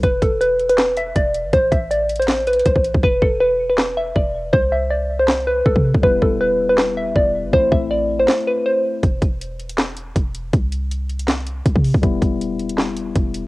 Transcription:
<<
  \new Staff \with { instrumentName = "Synth pluck" } { \time 4/4 \key e \minor \tempo 4 = 160 b'8 a'8 b'8. b'8. e''8 d''4 | c''8 e''8 d''8. c''8. b'8 c''8 r8 | b'8 a'8 b'8. b'8. e''8 d''4 | c''8 e''8 d''8. c''8. b'8 a'8 r8 |
b'8 a'8 b'8. b'8. e''8 d''4 | c''8 e''8 d''8. c''8. b'8 c''8 r8 | r1 | r1 |
r1 | }
  \new Staff \with { instrumentName = "Tine electric piano" } { \time 4/4 \key e \minor r1 | r1 | r1 | r1 |
<g b e'>1 | <a c' e'>1 | r1 | r1 |
<g b e'>1 | }
  \new Staff \with { instrumentName = "808-style bass" } { \clef bass \time 4/4 \key e \minor e,,8 e,,2~ e,,8 e,,8. g,,16 | a,,8 a,,2~ a,,8 a,,16 a,,8 a,,16 | e,,8 e,,2~ e,,8 e,,4 | c,2. c,16 c8 c,16 |
e,,8 e,,2~ e,,8 e,,8. g,,16 | a,,8 a,,4. r2 | e,,8 e,,2~ e,,8 e,,4 | c,2. c,16 c8 c,16 |
e,,8 e,,2~ e,,8 e,,8. r16 | }
  \new DrumStaff \with { instrumentName = "Drums" } \drummode { \time 4/4 <hh bd>8 <hh bd>8 hh8 hh16 hh16 <hc hh sn>8 hh8 <hh bd>8 hh8 | <hh bd>8 <hh bd>8 \tuplet 3/2 { hh16 r16 r16 hh16 hh16 hh16 <hc hh sn>16 r16 r16 hh16 hh16 hh16 } <hh bd>16 bd16 hh16 bd16 | bd8 bd8 r4 <hc sn>4 bd4 | bd4 r4 <hc sn>4 bd16 bd8 bd16 |
bd8 bd8 r4 <hc sn>4 bd4 | bd8 bd8 r4 <hc sn>4 r4 | <hh bd>8 <hh bd>8 hh8 hh16 hh16 <hc hh sn>8 hh8 <hh bd>8 hh8 | <hh bd>8 hh8 hh8 hh16 hh16 <hc hh sn>8 hh8 <hh bd>16 bd16 hho16 bd16 |
<hh bd>8 <hh bd>8 hh8 hh16 hh16 <hc hh sn>8 hh8 <hh bd>8 hh8 | }
>>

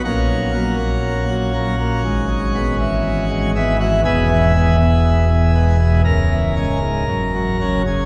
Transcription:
<<
  \new Staff \with { instrumentName = "Pipe organ" } { \time 4/4 \key e \lydian \tempo 4 = 60 <ais cis' fis'>2.~ <ais cis' fis'>8 e'16 fis'16 | <b e' gis'>2 ais'4.~ ais'16 gis'16 | }
  \new Staff \with { instrumentName = "Pipe organ" } { \clef bass \time 4/4 \key e \lydian << { ais,16 fis16 <fis ais>16 ais8 fis16 <fis ais>16 ais16 gis,16 gis16 <gis b>16 e8 gis16 <gis b>16 e16 | e,16 e16 <gis b>16 b,8 e16 <gis b>16 b,16 cis,16 e16 <gis cis'>16 gis,16 fis,16 fis16 <fis cis'>16 cis16 | } \\ { ais,,2 gis,,2 | e,,2 cis,,4 fis,,4 | } >> }
>>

